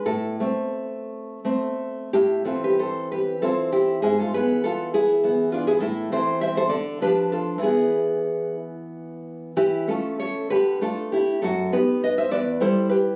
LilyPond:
\new Staff \with { instrumentName = "Nylon-string guitar" } { \time 6/8 \key a \minor \tempo 4. = 65 << { a'2~ a'8 r8 | <e' g'>8 <f' a'>16 <g' b'>16 <a' c''>8 <g' b'>8 <f' a'>8 <e' g'>8 | <e' gis'>16 <f' a'>16 <gis' b'>8 <f' a'>8 <e' gis'>4 <d' f'>16 <e' gis'>16 | <e' a'>8 <a' c''>8 <c'' e''>16 <a' c''>16 <a' d''>8 <g' b'>8 <f' a'>8 |
<e' gis'>4. r4. | <e' g'>8 <f' a'>8 <a' cis''>8 <g' b'>8 <f' a'>8 <e' g'>8 | <fis' a'>8 <g' b'>8 <b' dis''>16 <c'' e''>16 <b' d''>8 <a' c''>8 <g' b'>8 | } \\ { a,8 <a c'>4. <a c'>4 | a,8 <e c'>4. <e c'>4 | gis,8 <e b>4. <e b>4 | a,8 <e c'>4 d8 <f d'>4 |
<e b>2. | e8 <a cis'>4 d8 <a d'>4 | fis,8 <b dis'>4 e,8 <g e'>4 | } >> }